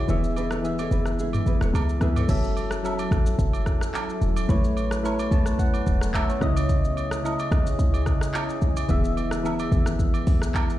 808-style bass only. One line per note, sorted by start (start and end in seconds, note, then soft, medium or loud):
0.09 0.87 E1 loud
0.91 1.38 F#1 loud
1.46 1.59 G#1 medium
1.61 1.72 E1 medium
1.74 1.97 C#2 medium
2.01 2.25 C#2 loud
2.29 3.07 F#1 loud
3.11 3.35 A1 loud
3.39 3.75 F#1 loud
4.22 4.45 E1 loud
4.49 5.28 A1 loud
5.31 5.68 B1 loud
5.87 6.23 E1 loud
6.42 7.36 C#2 loud
7.52 7.75 B1 loud
7.79 8.16 C#2 loud
8.62 8.85 B1 medium
8.89 9.68 E1 loud
9.72 10.08 G#1 loud
10.27 10.64 B1 loud